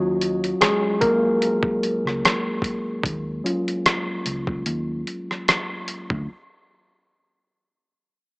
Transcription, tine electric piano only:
0, 0, Header, 1, 2, 480
1, 0, Start_track
1, 0, Key_signature, -6, "minor"
1, 0, Tempo, 810811
1, 1797, Time_signature, 4, 2, 24, 8
1, 4970, End_track
2, 0, Start_track
2, 0, Title_t, "Tine electric piano"
2, 0, Program_c, 0, 4
2, 0, Control_c, 0, 64, 127
2, 0, Note_on_c, 0, 54, 74
2, 0, Note_on_c, 0, 61, 44
2, 0, Note_on_c, 0, 65, 51
2, 0, Note_on_c, 0, 66, 92
2, 340, Note_off_c, 0, 54, 0
2, 360, Note_on_c, 0, 68, 88
2, 369, Note_on_c, 0, 56, 74
2, 373, Note_off_c, 0, 66, 0
2, 467, Note_off_c, 0, 68, 0
2, 474, Note_off_c, 0, 56, 0
2, 577, Note_off_c, 0, 61, 0
2, 578, Note_off_c, 0, 65, 0
2, 597, Note_on_c, 0, 70, 96
2, 608, Note_on_c, 0, 58, 80
2, 2037, Note_on_c, 0, 54, 57
2, 2040, Note_on_c, 0, 61, 52
2, 2044, Note_on_c, 0, 65, 60
2, 2733, Note_off_c, 0, 54, 0
2, 2735, Note_off_c, 0, 61, 0
2, 2737, Note_off_c, 0, 65, 0
2, 3213, Note_off_c, 0, 70, 0
2, 3218, Note_off_c, 0, 58, 0
2, 3724, Control_c, 0, 64, 0
2, 4970, End_track
0, 0, End_of_file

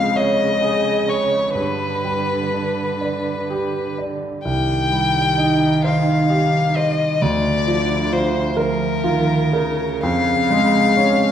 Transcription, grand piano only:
0, 0, Header, 1, 2, 480
1, 0, Start_track
1, 0, Key_signature, -3, "minor"
1, 0, Tempo, 930233
1, 800, Time_signature, 6, 3, 24, 8
1, 800, Tempo, 970874
1, 2240, Tempo, 914634
1, 4640, Tempo, 985222
1, 5120, Tempo, 924499
1, 5793, End_track
2, 0, Start_track
2, 0, Title_t, "Grand piano"
2, 0, Program_c, 0, 0
2, 0, Control_c, 0, 64, 127
2, 0, Note_on_c, 0, 41, 48
2, 0, Note_on_c, 0, 56, 36
2, 0, Note_on_c, 0, 65, 34
2, 82, Note_on_c, 0, 73, 39
2, 225, Note_off_c, 0, 65, 0
2, 318, Note_on_c, 0, 68, 37
2, 462, Note_off_c, 0, 73, 0
2, 559, Note_on_c, 0, 73, 34
2, 702, Note_off_c, 0, 68, 0
2, 785, Note_off_c, 0, 41, 0
2, 800, Note_on_c, 0, 43, 39
2, 801, Note_off_c, 0, 73, 0
2, 811, Note_off_c, 0, 56, 0
2, 811, Control_c, 0, 64, 0
2, 909, Control_c, 0, 64, 127
2, 1042, Note_on_c, 0, 55, 32
2, 1283, Note_on_c, 0, 62, 28
2, 1425, Note_off_c, 0, 55, 0
2, 1523, Note_on_c, 0, 74, 35
2, 1668, Note_off_c, 0, 62, 0
2, 1766, Note_on_c, 0, 67, 33
2, 1909, Note_off_c, 0, 74, 0
2, 2003, Note_on_c, 0, 74, 32
2, 2148, Note_off_c, 0, 67, 0
2, 2219, Note_off_c, 0, 43, 0
2, 2234, Note_on_c, 0, 36, 41
2, 2238, Note_off_c, 0, 74, 0
2, 2247, Control_c, 0, 64, 0
2, 2340, Control_c, 0, 64, 127
2, 2476, Note_on_c, 0, 55, 31
2, 2719, Note_on_c, 0, 63, 33
2, 2866, Note_off_c, 0, 55, 0
2, 2965, Note_on_c, 0, 72, 38
2, 3107, Note_off_c, 0, 63, 0
2, 3205, Note_on_c, 0, 67, 35
2, 3349, Note_off_c, 0, 72, 0
2, 3448, Note_on_c, 0, 72, 34
2, 3585, Note_off_c, 0, 67, 0
2, 3657, Note_off_c, 0, 36, 0
2, 3682, Note_off_c, 0, 72, 0
2, 3685, Note_on_c, 0, 38, 45
2, 3690, Control_c, 0, 64, 0
2, 3769, Control_c, 0, 64, 127
2, 3923, Note_on_c, 0, 53, 37
2, 4158, Note_on_c, 0, 65, 36
2, 4300, Note_off_c, 0, 53, 0
2, 4394, Note_on_c, 0, 70, 44
2, 4539, Note_off_c, 0, 65, 0
2, 4642, Note_on_c, 0, 65, 44
2, 4781, Note_off_c, 0, 70, 0
2, 4883, Note_on_c, 0, 70, 40
2, 5025, Note_off_c, 0, 65, 0
2, 5100, Note_off_c, 0, 38, 0
2, 5120, Note_off_c, 0, 70, 0
2, 5125, Note_on_c, 0, 41, 51
2, 5127, Control_c, 0, 64, 0
2, 5201, Control_c, 0, 64, 127
2, 5371, Note_on_c, 0, 56, 42
2, 5611, Note_on_c, 0, 61, 35
2, 5611, Note_on_c, 0, 73, 37
2, 5747, Note_off_c, 0, 56, 0
2, 5793, Note_off_c, 0, 41, 0
2, 5793, Note_off_c, 0, 61, 0
2, 5793, Note_off_c, 0, 73, 0
2, 5793, End_track
0, 0, End_of_file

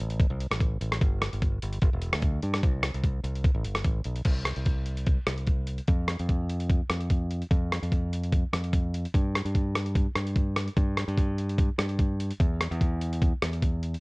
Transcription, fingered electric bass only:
0, 0, Header, 1, 2, 480
1, 0, Start_track
1, 0, Key_signature, 0, "major"
1, 0, Tempo, 406780
1, 1193, Time_signature, 4, 2, 24, 8
1, 16521, End_track
2, 0, Start_track
2, 0, Title_t, "Fingered electric bass"
2, 0, Program_c, 0, 33
2, 2, Note_on_c, 0, 33, 94
2, 313, Note_off_c, 0, 33, 0
2, 357, Note_on_c, 0, 36, 102
2, 564, Note_off_c, 0, 36, 0
2, 600, Note_on_c, 0, 33, 87
2, 901, Note_off_c, 0, 33, 0
2, 954, Note_on_c, 0, 33, 92
2, 1158, Note_off_c, 0, 33, 0
2, 1191, Note_on_c, 0, 31, 109
2, 1505, Note_off_c, 0, 31, 0
2, 1561, Note_on_c, 0, 31, 92
2, 1861, Note_off_c, 0, 31, 0
2, 1917, Note_on_c, 0, 31, 90
2, 2119, Note_off_c, 0, 31, 0
2, 2150, Note_on_c, 0, 31, 103
2, 2259, Note_off_c, 0, 31, 0
2, 2278, Note_on_c, 0, 28, 100
2, 2483, Note_off_c, 0, 28, 0
2, 2522, Note_on_c, 0, 38, 92
2, 2820, Note_off_c, 0, 38, 0
2, 2868, Note_on_c, 0, 43, 96
2, 3073, Note_off_c, 0, 43, 0
2, 3105, Note_on_c, 0, 36, 117
2, 3420, Note_off_c, 0, 36, 0
2, 3473, Note_on_c, 0, 36, 86
2, 3774, Note_off_c, 0, 36, 0
2, 3820, Note_on_c, 0, 36, 88
2, 4137, Note_off_c, 0, 36, 0
2, 4187, Note_on_c, 0, 33, 95
2, 4285, Note_off_c, 0, 33, 0
2, 4303, Note_on_c, 0, 31, 76
2, 4520, Note_off_c, 0, 31, 0
2, 4538, Note_on_c, 0, 33, 84
2, 4757, Note_off_c, 0, 33, 0
2, 4782, Note_on_c, 0, 35, 83
2, 4999, Note_off_c, 0, 35, 0
2, 5014, Note_on_c, 0, 36, 92
2, 5333, Note_off_c, 0, 36, 0
2, 5383, Note_on_c, 0, 36, 90
2, 6098, Note_off_c, 0, 36, 0
2, 6215, Note_on_c, 0, 36, 74
2, 6834, Note_off_c, 0, 36, 0
2, 6939, Note_on_c, 0, 41, 93
2, 7256, Note_off_c, 0, 41, 0
2, 7311, Note_on_c, 0, 41, 93
2, 8023, Note_off_c, 0, 41, 0
2, 8138, Note_on_c, 0, 41, 76
2, 8757, Note_off_c, 0, 41, 0
2, 8860, Note_on_c, 0, 41, 99
2, 9177, Note_off_c, 0, 41, 0
2, 9234, Note_on_c, 0, 41, 98
2, 9946, Note_off_c, 0, 41, 0
2, 10064, Note_on_c, 0, 41, 81
2, 10681, Note_off_c, 0, 41, 0
2, 10788, Note_on_c, 0, 43, 94
2, 11103, Note_off_c, 0, 43, 0
2, 11151, Note_on_c, 0, 43, 90
2, 11865, Note_off_c, 0, 43, 0
2, 11980, Note_on_c, 0, 43, 75
2, 12600, Note_off_c, 0, 43, 0
2, 12705, Note_on_c, 0, 43, 96
2, 13022, Note_off_c, 0, 43, 0
2, 13072, Note_on_c, 0, 43, 88
2, 13788, Note_off_c, 0, 43, 0
2, 13905, Note_on_c, 0, 43, 83
2, 14525, Note_off_c, 0, 43, 0
2, 14631, Note_on_c, 0, 40, 98
2, 14948, Note_off_c, 0, 40, 0
2, 15000, Note_on_c, 0, 40, 98
2, 15715, Note_off_c, 0, 40, 0
2, 15843, Note_on_c, 0, 40, 79
2, 16458, Note_off_c, 0, 40, 0
2, 16521, End_track
0, 0, End_of_file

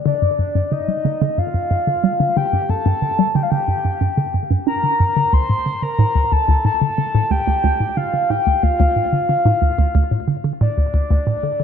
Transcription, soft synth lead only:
0, 0, Header, 1, 2, 480
1, 0, Start_track
1, 0, Key_signature, -2, "minor"
1, 0, Tempo, 659341
1, 43, Time_signature, 4, 2, 24, 8
1, 8472, End_track
2, 0, Start_track
2, 0, Title_t, "Soft synth lead"
2, 0, Program_c, 0, 80
2, 47, Note_on_c, 0, 74, 102
2, 526, Note_on_c, 0, 75, 90
2, 537, Note_off_c, 0, 74, 0
2, 1008, Note_on_c, 0, 77, 97
2, 1019, Note_off_c, 0, 75, 0
2, 1720, Note_off_c, 0, 77, 0
2, 1725, Note_on_c, 0, 79, 97
2, 1964, Note_on_c, 0, 81, 109
2, 1975, Note_off_c, 0, 79, 0
2, 2444, Note_on_c, 0, 79, 80
2, 2454, Note_off_c, 0, 81, 0
2, 2495, Note_on_c, 0, 77, 69
2, 2506, Note_off_c, 0, 79, 0
2, 2550, Note_on_c, 0, 79, 88
2, 2561, Note_off_c, 0, 77, 0
2, 3165, Note_off_c, 0, 79, 0
2, 3402, Note_on_c, 0, 82, 112
2, 3883, Note_on_c, 0, 84, 121
2, 3894, Note_off_c, 0, 82, 0
2, 4243, Note_on_c, 0, 82, 113
2, 4254, Note_off_c, 0, 84, 0
2, 4604, Note_on_c, 0, 81, 102
2, 4615, Note_off_c, 0, 82, 0
2, 4839, Note_off_c, 0, 81, 0
2, 4843, Note_on_c, 0, 81, 113
2, 5322, Note_on_c, 0, 79, 101
2, 5333, Note_off_c, 0, 81, 0
2, 5803, Note_on_c, 0, 77, 94
2, 5814, Note_off_c, 0, 79, 0
2, 6045, Note_on_c, 0, 79, 93
2, 6055, Note_off_c, 0, 77, 0
2, 6284, Note_on_c, 0, 77, 88
2, 6295, Note_off_c, 0, 79, 0
2, 6756, Note_off_c, 0, 77, 0
2, 6761, Note_on_c, 0, 77, 84
2, 7453, Note_off_c, 0, 77, 0
2, 7725, Note_on_c, 0, 74, 108
2, 8472, Note_off_c, 0, 74, 0
2, 8472, End_track
0, 0, End_of_file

